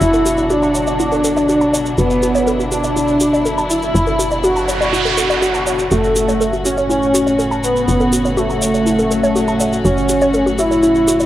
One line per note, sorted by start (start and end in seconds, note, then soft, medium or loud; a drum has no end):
0.00 1.95 F#1 medium
0.00 5.87 B2 medium
0.00 5.87 D3 medium
0.00 5.87 F#3 medium
0.00 5.87 D4 medium
0.00 0.41 E4 medium
0.00 0.07 E4 medium
0.00 1.94 F#4 medium
0.00 shaker soft
0.13 0.20 A4 medium
0.13 shaker soft
0.26 0.35 F#4 medium
0.26 shaker medium
0.37 0.44 D5 medium
0.37 shaker soft
0.50 1.88 D4 loud
0.50 0.56 F#4 medium
0.50 shaker soft
0.63 0.69 A5 medium
0.63 shaker soft
0.74 0.81 C#5 medium
0.74 shaker medium
0.87 0.91 D5 medium
0.87 shaker soft
0.99 1.06 E4 medium
0.99 shaker soft
1.12 1.18 A4 medium
1.12 shaker soft
1.24 1.30 A4 medium
1.24 shaker medium
1.37 1.43 D5 medium
1.37 shaker soft
1.49 1.55 F#4 medium
1.49 shaker soft
1.61 1.67 A5 medium
1.61 shaker soft
1.73 1.79 C#5 medium
1.73 shaker medium
1.86 shaker soft
1.98 3.92 F#1 medium
1.98 2.62 B3 loud
1.98 5.87 E4 medium
1.98 2.04 F#4 medium
1.98 shaker soft
2.10 shaker soft
2.23 2.29 F#4 medium
2.23 shaker medium
2.35 2.44 C#5 medium
2.35 shaker soft
2.47 2.53 A4 medium
2.47 shaker soft
2.60 2.68 F#4 medium
2.60 shaker soft
2.72 3.60 D4 loud
2.72 2.75 F#4 medium
2.72 shaker medium
2.84 2.88 D5 medium
2.84 shaker soft
2.96 3.02 E4 medium
2.96 shaker soft
3.08 shaker soft
3.20 3.30 F#4 medium
3.20 shaker medium
3.33 3.39 D5 medium
3.33 shaker soft
3.45 3.52 A4 medium
3.45 shaker soft
3.58 3.64 A5 medium
3.58 shaker soft
3.70 4.34 E4 medium
3.70 shaker medium
3.82 shaker soft
3.95 5.89 F#1 medium
3.95 4.01 E4 medium
3.95 noise sweep medium
3.95 shaker soft
4.07 4.13 A4 medium
4.07 shaker soft
4.19 4.28 F#4 medium
4.19 shaker medium
4.31 4.38 D5 medium
4.31 shaker soft
4.44 4.50 F#4 medium
4.44 5.82 F#4 loud
4.44 shaker soft
4.56 4.62 A5 medium
4.56 shaker soft
4.68 4.74 C#5 medium
4.68 shaker medium
4.81 4.84 D5 medium
4.81 shaker soft
4.93 4.99 E4 medium
4.93 shaker soft
5.05 5.11 A4 medium
5.05 shaker soft
5.17 5.24 A4 medium
5.17 shaker medium
5.30 5.36 D5 loud
5.30 shaker soft
5.42 5.48 F#4 medium
5.42 shaker soft
5.54 5.60 A5 medium
5.54 shaker soft
5.67 5.73 C#5 medium
5.67 shaker medium
5.79 shaker soft
5.91 7.86 F#1 medium
5.91 11.26 A2 medium
5.91 11.26 C#3 medium
5.91 11.26 F#3 medium
5.91 6.55 A3 loud
5.91 11.26 C#4 medium
5.91 5.97 F#4 medium
5.91 11.26 F#4 medium
5.91 shaker soft
6.04 shaker soft
6.16 6.22 F#4 medium
6.16 shaker medium
6.28 6.37 C#5 loud
6.28 shaker soft
6.40 6.47 A4 medium
6.40 shaker soft
6.53 6.62 F#4 medium
6.53 shaker soft
6.65 7.54 C#4 loud
6.65 6.69 F#4 medium
6.65 shaker medium
6.77 6.81 C#5 medium
6.77 shaker soft
6.90 6.96 E4 medium
6.90 shaker soft
7.03 shaker soft
7.14 7.23 F#4 medium
7.14 shaker medium
7.27 7.33 C#5 medium
7.27 shaker soft
7.39 7.45 A4 medium
7.39 shaker soft
7.51 7.57 A5 medium
7.51 shaker soft
7.63 8.27 B3 medium
7.63 shaker medium
7.76 shaker soft
7.88 9.82 F#1 medium
7.88 7.94 E4 medium
7.88 shaker soft
8.00 8.06 A4 medium
8.00 shaker soft
8.13 8.22 F#4 medium
8.13 shaker medium
8.25 8.31 C#5 medium
8.25 shaker soft
8.37 9.75 A3 loud
8.37 8.43 F#4 medium
8.37 shaker soft
8.50 8.56 A5 medium
8.50 shaker soft
8.62 8.68 C#5 medium
8.62 shaker medium
8.74 8.78 C#5 medium
8.74 shaker soft
8.86 8.93 E4 medium
8.86 shaker medium
8.99 9.05 A4 medium
8.99 shaker soft
9.11 9.17 A4 medium
9.11 shaker medium
9.23 9.29 C#5 medium
9.23 shaker soft
9.35 9.42 F#4 medium
9.35 shaker soft
9.48 9.54 A5 medium
9.48 shaker soft
9.60 9.66 C#5 medium
9.60 shaker medium
9.73 shaker soft
9.85 11.26 F#1 medium
9.85 10.49 C#4 loud
9.85 9.91 F#4 medium
9.85 shaker medium
9.97 shaker soft
10.09 10.15 F#4 medium
10.09 shaker medium
10.21 10.31 C#5 medium
10.21 shaker soft
10.34 10.40 A4 medium
10.34 shaker soft
10.46 10.55 F#4 medium
10.46 shaker soft
10.58 11.26 E4 loud
10.58 10.62 F#4 medium
10.58 shaker medium
10.71 10.75 C#5 medium
10.71 shaker soft
10.83 10.89 E4 medium
10.83 shaker soft
10.95 shaker soft
11.08 11.17 F#4 medium
11.08 shaker loud
11.20 11.26 C#5 medium
11.20 shaker soft